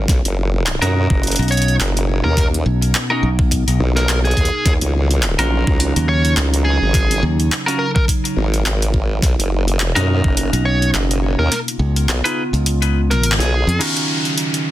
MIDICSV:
0, 0, Header, 1, 8, 480
1, 0, Start_track
1, 0, Key_signature, -6, "minor"
1, 0, Tempo, 571429
1, 71, Time_signature, 4, 2, 24, 8
1, 12356, End_track
2, 0, Start_track
2, 0, Title_t, "Lead electric guitar"
2, 0, Program_c, 0, 29
2, 1266, Note_on_c, 0, 73, 84
2, 1464, Note_off_c, 0, 73, 0
2, 1882, Note_on_c, 0, 70, 94
2, 2066, Note_off_c, 0, 70, 0
2, 3328, Note_on_c, 0, 70, 89
2, 3509, Note_off_c, 0, 70, 0
2, 3567, Note_on_c, 0, 68, 91
2, 3966, Note_off_c, 0, 68, 0
2, 5113, Note_on_c, 0, 73, 87
2, 5307, Note_off_c, 0, 73, 0
2, 5582, Note_on_c, 0, 68, 92
2, 6067, Note_off_c, 0, 68, 0
2, 6542, Note_on_c, 0, 70, 90
2, 6633, Note_off_c, 0, 70, 0
2, 6679, Note_on_c, 0, 70, 77
2, 6750, Note_off_c, 0, 70, 0
2, 8950, Note_on_c, 0, 73, 86
2, 9146, Note_off_c, 0, 73, 0
2, 9567, Note_on_c, 0, 70, 92
2, 9726, Note_off_c, 0, 70, 0
2, 11010, Note_on_c, 0, 70, 98
2, 11190, Note_off_c, 0, 70, 0
2, 11245, Note_on_c, 0, 68, 95
2, 11591, Note_off_c, 0, 68, 0
2, 12356, End_track
3, 0, Start_track
3, 0, Title_t, "Clean electric guitar"
3, 0, Program_c, 1, 27
3, 686, Note_on_c, 1, 70, 98
3, 688, Note_on_c, 1, 66, 83
3, 691, Note_on_c, 1, 63, 75
3, 694, Note_on_c, 1, 61, 75
3, 2575, Note_off_c, 1, 61, 0
3, 2575, Note_off_c, 1, 63, 0
3, 2575, Note_off_c, 1, 66, 0
3, 2575, Note_off_c, 1, 70, 0
3, 2604, Note_on_c, 1, 70, 85
3, 2609, Note_on_c, 1, 66, 69
3, 2613, Note_on_c, 1, 63, 69
3, 2620, Note_on_c, 1, 61, 69
3, 2756, Note_off_c, 1, 63, 0
3, 2756, Note_off_c, 1, 66, 0
3, 2756, Note_off_c, 1, 70, 0
3, 2757, Note_off_c, 1, 61, 0
3, 4526, Note_on_c, 1, 70, 105
3, 4529, Note_on_c, 1, 66, 79
3, 4531, Note_on_c, 1, 65, 79
3, 4537, Note_on_c, 1, 61, 80
3, 6415, Note_off_c, 1, 61, 0
3, 6415, Note_off_c, 1, 65, 0
3, 6415, Note_off_c, 1, 66, 0
3, 6415, Note_off_c, 1, 70, 0
3, 6437, Note_on_c, 1, 70, 95
3, 6443, Note_on_c, 1, 66, 70
3, 6447, Note_on_c, 1, 65, 68
3, 6452, Note_on_c, 1, 61, 73
3, 6593, Note_off_c, 1, 65, 0
3, 6593, Note_off_c, 1, 70, 0
3, 6594, Note_off_c, 1, 61, 0
3, 6594, Note_off_c, 1, 66, 0
3, 8361, Note_on_c, 1, 70, 104
3, 8363, Note_on_c, 1, 66, 88
3, 8366, Note_on_c, 1, 63, 80
3, 8371, Note_on_c, 1, 61, 83
3, 9657, Note_off_c, 1, 63, 0
3, 9657, Note_off_c, 1, 66, 0
3, 9657, Note_off_c, 1, 70, 0
3, 9658, Note_off_c, 1, 61, 0
3, 10284, Note_on_c, 1, 71, 99
3, 10288, Note_on_c, 1, 68, 74
3, 10290, Note_on_c, 1, 65, 70
3, 10295, Note_on_c, 1, 63, 73
3, 10435, Note_off_c, 1, 63, 0
3, 10436, Note_off_c, 1, 65, 0
3, 10436, Note_off_c, 1, 68, 0
3, 10436, Note_off_c, 1, 71, 0
3, 11585, Note_on_c, 1, 51, 71
3, 11589, Note_on_c, 1, 61, 65
3, 11593, Note_on_c, 1, 65, 59
3, 11596, Note_on_c, 1, 66, 51
3, 11600, Note_on_c, 1, 70, 68
3, 12356, Note_off_c, 1, 51, 0
3, 12356, Note_off_c, 1, 61, 0
3, 12356, Note_off_c, 1, 65, 0
3, 12356, Note_off_c, 1, 66, 0
3, 12356, Note_off_c, 1, 70, 0
3, 12356, End_track
4, 0, Start_track
4, 0, Title_t, "Ambient pad"
4, 0, Program_c, 2, 92
4, 74, Note_on_c, 2, 58, 77
4, 76, Note_on_c, 2, 63, 91
4, 77, Note_on_c, 2, 47, 79
4, 1974, Note_off_c, 2, 58, 0
4, 1991, Note_on_c, 2, 59, 75
4, 3881, Note_off_c, 2, 47, 0
4, 3892, Note_off_c, 2, 59, 0
4, 3916, Note_on_c, 2, 49, 84
4, 3916, Note_on_c, 2, 54, 74
4, 7720, Note_off_c, 2, 49, 0
4, 7720, Note_off_c, 2, 54, 0
4, 7756, Note_on_c, 2, 47, 82
4, 7757, Note_on_c, 2, 58, 76
4, 9640, Note_off_c, 2, 63, 0
4, 9655, Note_off_c, 2, 47, 0
4, 9655, Note_off_c, 2, 58, 0
4, 9670, Note_on_c, 2, 49, 84
4, 9671, Note_on_c, 2, 59, 78
4, 9672, Note_on_c, 2, 65, 89
4, 11572, Note_off_c, 2, 49, 0
4, 11572, Note_off_c, 2, 59, 0
4, 11572, Note_off_c, 2, 65, 0
4, 11591, Note_on_c, 2, 54, 70
4, 11594, Note_on_c, 2, 63, 85
4, 11596, Note_on_c, 2, 49, 80
4, 12356, Note_off_c, 2, 49, 0
4, 12356, Note_off_c, 2, 54, 0
4, 12356, Note_off_c, 2, 63, 0
4, 12356, End_track
5, 0, Start_track
5, 0, Title_t, "Fingered electric bass"
5, 0, Program_c, 3, 33
5, 1167, Note_on_c, 3, 35, 95
5, 1495, Note_off_c, 3, 35, 0
5, 2232, Note_on_c, 3, 35, 96
5, 2455, Note_off_c, 3, 35, 0
5, 2713, Note_on_c, 3, 35, 97
5, 3066, Note_off_c, 3, 35, 0
5, 3088, Note_on_c, 3, 35, 96
5, 3175, Note_off_c, 3, 35, 0
5, 5008, Note_on_c, 3, 39, 91
5, 5335, Note_off_c, 3, 39, 0
5, 6071, Note_on_c, 3, 39, 99
5, 6294, Note_off_c, 3, 39, 0
5, 8845, Note_on_c, 3, 35, 96
5, 9174, Note_off_c, 3, 35, 0
5, 9906, Note_on_c, 3, 37, 99
5, 10132, Note_off_c, 3, 37, 0
5, 10526, Note_on_c, 3, 37, 97
5, 11225, Note_off_c, 3, 37, 0
5, 11484, Note_on_c, 3, 41, 96
5, 11573, Note_off_c, 3, 41, 0
5, 12356, End_track
6, 0, Start_track
6, 0, Title_t, "Wobble bass"
6, 0, Program_c, 4, 39
6, 68, Note_on_c, 4, 35, 96
6, 184, Note_off_c, 4, 35, 0
6, 207, Note_on_c, 4, 30, 99
6, 665, Note_off_c, 4, 30, 0
6, 688, Note_on_c, 4, 42, 95
6, 906, Note_off_c, 4, 42, 0
6, 926, Note_on_c, 4, 30, 90
6, 1145, Note_off_c, 4, 30, 0
6, 1514, Note_on_c, 4, 30, 91
6, 1866, Note_off_c, 4, 30, 0
6, 1890, Note_on_c, 4, 39, 92
6, 2216, Note_off_c, 4, 39, 0
6, 3192, Note_on_c, 4, 35, 99
6, 3655, Note_off_c, 4, 35, 0
6, 3671, Note_on_c, 4, 39, 93
6, 3785, Note_off_c, 4, 39, 0
6, 3910, Note_on_c, 4, 39, 102
6, 4025, Note_off_c, 4, 39, 0
6, 4047, Note_on_c, 4, 37, 97
6, 4505, Note_off_c, 4, 37, 0
6, 4524, Note_on_c, 4, 34, 93
6, 4744, Note_off_c, 4, 34, 0
6, 4767, Note_on_c, 4, 37, 96
6, 4985, Note_off_c, 4, 37, 0
6, 5352, Note_on_c, 4, 37, 96
6, 5705, Note_off_c, 4, 37, 0
6, 5730, Note_on_c, 4, 32, 94
6, 6056, Note_off_c, 4, 32, 0
6, 7030, Note_on_c, 4, 32, 95
6, 7734, Note_off_c, 4, 32, 0
6, 7748, Note_on_c, 4, 35, 99
6, 7864, Note_off_c, 4, 35, 0
6, 7884, Note_on_c, 4, 30, 103
6, 8344, Note_off_c, 4, 30, 0
6, 8369, Note_on_c, 4, 42, 97
6, 8586, Note_off_c, 4, 42, 0
6, 8603, Note_on_c, 4, 30, 92
6, 8823, Note_off_c, 4, 30, 0
6, 9189, Note_on_c, 4, 30, 95
6, 9544, Note_off_c, 4, 30, 0
6, 9566, Note_on_c, 4, 39, 98
6, 9654, Note_off_c, 4, 39, 0
6, 10150, Note_on_c, 4, 35, 99
6, 10265, Note_off_c, 4, 35, 0
6, 11246, Note_on_c, 4, 35, 101
6, 11465, Note_off_c, 4, 35, 0
6, 12356, End_track
7, 0, Start_track
7, 0, Title_t, "Downlifter"
7, 0, Program_c, 5, 103
7, 11592, Note_on_c, 5, 60, 65
7, 12356, Note_off_c, 5, 60, 0
7, 12356, End_track
8, 0, Start_track
8, 0, Title_t, "Drums"
8, 70, Note_on_c, 9, 36, 127
8, 79, Note_on_c, 9, 38, 38
8, 79, Note_on_c, 9, 42, 82
8, 154, Note_off_c, 9, 36, 0
8, 163, Note_off_c, 9, 38, 0
8, 163, Note_off_c, 9, 42, 0
8, 212, Note_on_c, 9, 42, 54
8, 296, Note_off_c, 9, 42, 0
8, 560, Note_on_c, 9, 39, 127
8, 560, Note_on_c, 9, 42, 85
8, 644, Note_off_c, 9, 39, 0
8, 644, Note_off_c, 9, 42, 0
8, 691, Note_on_c, 9, 42, 56
8, 775, Note_off_c, 9, 42, 0
8, 926, Note_on_c, 9, 36, 110
8, 1010, Note_off_c, 9, 36, 0
8, 1037, Note_on_c, 9, 42, 39
8, 1068, Note_off_c, 9, 42, 0
8, 1068, Note_on_c, 9, 42, 49
8, 1105, Note_off_c, 9, 42, 0
8, 1105, Note_on_c, 9, 42, 56
8, 1140, Note_off_c, 9, 42, 0
8, 1140, Note_on_c, 9, 42, 70
8, 1172, Note_off_c, 9, 42, 0
8, 1172, Note_on_c, 9, 42, 23
8, 1197, Note_off_c, 9, 42, 0
8, 1197, Note_on_c, 9, 42, 27
8, 1244, Note_off_c, 9, 42, 0
8, 1244, Note_on_c, 9, 42, 33
8, 1278, Note_off_c, 9, 42, 0
8, 1278, Note_on_c, 9, 42, 39
8, 1321, Note_off_c, 9, 42, 0
8, 1321, Note_on_c, 9, 42, 43
8, 1358, Note_off_c, 9, 42, 0
8, 1358, Note_on_c, 9, 42, 49
8, 1414, Note_off_c, 9, 42, 0
8, 1414, Note_on_c, 9, 42, 37
8, 1498, Note_off_c, 9, 42, 0
8, 1516, Note_on_c, 9, 39, 126
8, 1516, Note_on_c, 9, 42, 85
8, 1600, Note_off_c, 9, 39, 0
8, 1600, Note_off_c, 9, 42, 0
8, 1654, Note_on_c, 9, 42, 58
8, 1738, Note_off_c, 9, 42, 0
8, 1991, Note_on_c, 9, 36, 127
8, 1999, Note_on_c, 9, 38, 37
8, 1999, Note_on_c, 9, 42, 76
8, 2075, Note_off_c, 9, 36, 0
8, 2083, Note_off_c, 9, 38, 0
8, 2083, Note_off_c, 9, 42, 0
8, 2137, Note_on_c, 9, 42, 54
8, 2221, Note_off_c, 9, 42, 0
8, 2372, Note_on_c, 9, 42, 39
8, 2456, Note_off_c, 9, 42, 0
8, 2477, Note_on_c, 9, 39, 127
8, 2477, Note_on_c, 9, 42, 82
8, 2561, Note_off_c, 9, 39, 0
8, 2561, Note_off_c, 9, 42, 0
8, 2846, Note_on_c, 9, 36, 117
8, 2930, Note_off_c, 9, 36, 0
8, 2951, Note_on_c, 9, 36, 66
8, 2955, Note_on_c, 9, 42, 80
8, 3035, Note_off_c, 9, 36, 0
8, 3039, Note_off_c, 9, 42, 0
8, 3089, Note_on_c, 9, 42, 52
8, 3173, Note_off_c, 9, 42, 0
8, 3333, Note_on_c, 9, 38, 35
8, 3333, Note_on_c, 9, 42, 35
8, 3417, Note_off_c, 9, 38, 0
8, 3417, Note_off_c, 9, 42, 0
8, 3437, Note_on_c, 9, 39, 123
8, 3437, Note_on_c, 9, 42, 78
8, 3521, Note_off_c, 9, 39, 0
8, 3521, Note_off_c, 9, 42, 0
8, 3571, Note_on_c, 9, 42, 24
8, 3622, Note_off_c, 9, 42, 0
8, 3622, Note_on_c, 9, 42, 31
8, 3670, Note_on_c, 9, 36, 63
8, 3672, Note_off_c, 9, 42, 0
8, 3672, Note_on_c, 9, 42, 37
8, 3740, Note_off_c, 9, 42, 0
8, 3740, Note_on_c, 9, 42, 43
8, 3754, Note_off_c, 9, 36, 0
8, 3824, Note_off_c, 9, 42, 0
8, 3911, Note_on_c, 9, 36, 125
8, 3912, Note_on_c, 9, 38, 38
8, 3912, Note_on_c, 9, 42, 74
8, 3995, Note_off_c, 9, 36, 0
8, 3996, Note_off_c, 9, 38, 0
8, 3996, Note_off_c, 9, 42, 0
8, 4044, Note_on_c, 9, 42, 51
8, 4128, Note_off_c, 9, 42, 0
8, 4289, Note_on_c, 9, 42, 36
8, 4373, Note_off_c, 9, 42, 0
8, 4391, Note_on_c, 9, 39, 123
8, 4391, Note_on_c, 9, 42, 81
8, 4475, Note_off_c, 9, 39, 0
8, 4475, Note_off_c, 9, 42, 0
8, 4526, Note_on_c, 9, 42, 53
8, 4610, Note_off_c, 9, 42, 0
8, 4765, Note_on_c, 9, 36, 109
8, 4849, Note_off_c, 9, 36, 0
8, 4872, Note_on_c, 9, 42, 79
8, 4956, Note_off_c, 9, 42, 0
8, 5009, Note_on_c, 9, 42, 48
8, 5093, Note_off_c, 9, 42, 0
8, 5247, Note_on_c, 9, 42, 35
8, 5331, Note_off_c, 9, 42, 0
8, 5351, Note_on_c, 9, 39, 122
8, 5351, Note_on_c, 9, 42, 78
8, 5435, Note_off_c, 9, 39, 0
8, 5435, Note_off_c, 9, 42, 0
8, 5490, Note_on_c, 9, 42, 53
8, 5574, Note_off_c, 9, 42, 0
8, 5830, Note_on_c, 9, 36, 124
8, 5835, Note_on_c, 9, 38, 38
8, 5835, Note_on_c, 9, 42, 75
8, 5914, Note_off_c, 9, 36, 0
8, 5919, Note_off_c, 9, 38, 0
8, 5919, Note_off_c, 9, 42, 0
8, 5972, Note_on_c, 9, 42, 50
8, 6056, Note_off_c, 9, 42, 0
8, 6213, Note_on_c, 9, 42, 36
8, 6297, Note_off_c, 9, 42, 0
8, 6319, Note_on_c, 9, 39, 116
8, 6319, Note_on_c, 9, 42, 78
8, 6403, Note_off_c, 9, 39, 0
8, 6403, Note_off_c, 9, 42, 0
8, 6454, Note_on_c, 9, 42, 53
8, 6538, Note_off_c, 9, 42, 0
8, 6685, Note_on_c, 9, 36, 105
8, 6769, Note_off_c, 9, 36, 0
8, 6789, Note_on_c, 9, 36, 62
8, 6795, Note_on_c, 9, 42, 79
8, 6873, Note_off_c, 9, 36, 0
8, 6879, Note_off_c, 9, 42, 0
8, 6932, Note_on_c, 9, 42, 51
8, 7016, Note_off_c, 9, 42, 0
8, 7171, Note_on_c, 9, 42, 37
8, 7255, Note_off_c, 9, 42, 0
8, 7275, Note_on_c, 9, 39, 116
8, 7275, Note_on_c, 9, 42, 72
8, 7359, Note_off_c, 9, 39, 0
8, 7359, Note_off_c, 9, 42, 0
8, 7412, Note_on_c, 9, 42, 54
8, 7496, Note_off_c, 9, 42, 0
8, 7508, Note_on_c, 9, 36, 60
8, 7592, Note_off_c, 9, 36, 0
8, 7749, Note_on_c, 9, 36, 114
8, 7757, Note_on_c, 9, 38, 41
8, 7757, Note_on_c, 9, 42, 80
8, 7833, Note_off_c, 9, 36, 0
8, 7841, Note_off_c, 9, 38, 0
8, 7841, Note_off_c, 9, 42, 0
8, 7894, Note_on_c, 9, 42, 56
8, 7978, Note_off_c, 9, 42, 0
8, 8130, Note_on_c, 9, 42, 36
8, 8214, Note_off_c, 9, 42, 0
8, 8233, Note_on_c, 9, 39, 126
8, 8233, Note_on_c, 9, 42, 83
8, 8317, Note_off_c, 9, 39, 0
8, 8317, Note_off_c, 9, 42, 0
8, 8370, Note_on_c, 9, 42, 52
8, 8454, Note_off_c, 9, 42, 0
8, 8604, Note_on_c, 9, 36, 103
8, 8688, Note_off_c, 9, 36, 0
8, 8711, Note_on_c, 9, 42, 78
8, 8795, Note_off_c, 9, 42, 0
8, 8848, Note_on_c, 9, 42, 52
8, 8932, Note_off_c, 9, 42, 0
8, 9091, Note_on_c, 9, 42, 35
8, 9175, Note_off_c, 9, 42, 0
8, 9195, Note_on_c, 9, 39, 114
8, 9195, Note_on_c, 9, 42, 80
8, 9279, Note_off_c, 9, 39, 0
8, 9279, Note_off_c, 9, 42, 0
8, 9331, Note_on_c, 9, 42, 55
8, 9415, Note_off_c, 9, 42, 0
8, 9675, Note_on_c, 9, 38, 43
8, 9675, Note_on_c, 9, 42, 80
8, 9759, Note_off_c, 9, 38, 0
8, 9759, Note_off_c, 9, 42, 0
8, 9812, Note_on_c, 9, 42, 57
8, 9896, Note_off_c, 9, 42, 0
8, 10050, Note_on_c, 9, 42, 40
8, 10134, Note_off_c, 9, 42, 0
8, 10157, Note_on_c, 9, 39, 123
8, 10157, Note_on_c, 9, 42, 88
8, 10241, Note_off_c, 9, 39, 0
8, 10241, Note_off_c, 9, 42, 0
8, 10294, Note_on_c, 9, 42, 54
8, 10378, Note_off_c, 9, 42, 0
8, 10533, Note_on_c, 9, 42, 39
8, 10617, Note_off_c, 9, 42, 0
8, 10636, Note_on_c, 9, 42, 82
8, 10720, Note_off_c, 9, 42, 0
8, 10771, Note_on_c, 9, 42, 52
8, 10855, Note_off_c, 9, 42, 0
8, 11014, Note_on_c, 9, 38, 39
8, 11014, Note_on_c, 9, 42, 39
8, 11098, Note_off_c, 9, 38, 0
8, 11098, Note_off_c, 9, 42, 0
8, 11117, Note_on_c, 9, 42, 83
8, 11188, Note_on_c, 9, 39, 114
8, 11201, Note_off_c, 9, 42, 0
8, 11259, Note_on_c, 9, 38, 41
8, 11259, Note_on_c, 9, 42, 53
8, 11272, Note_off_c, 9, 39, 0
8, 11343, Note_off_c, 9, 38, 0
8, 11343, Note_off_c, 9, 42, 0
8, 11497, Note_on_c, 9, 42, 38
8, 11581, Note_off_c, 9, 42, 0
8, 11598, Note_on_c, 9, 42, 75
8, 11598, Note_on_c, 9, 49, 71
8, 11682, Note_off_c, 9, 42, 0
8, 11682, Note_off_c, 9, 49, 0
8, 11732, Note_on_c, 9, 42, 51
8, 11816, Note_off_c, 9, 42, 0
8, 11972, Note_on_c, 9, 42, 34
8, 12056, Note_off_c, 9, 42, 0
8, 12075, Note_on_c, 9, 42, 80
8, 12159, Note_off_c, 9, 42, 0
8, 12213, Note_on_c, 9, 42, 53
8, 12297, Note_off_c, 9, 42, 0
8, 12356, End_track
0, 0, End_of_file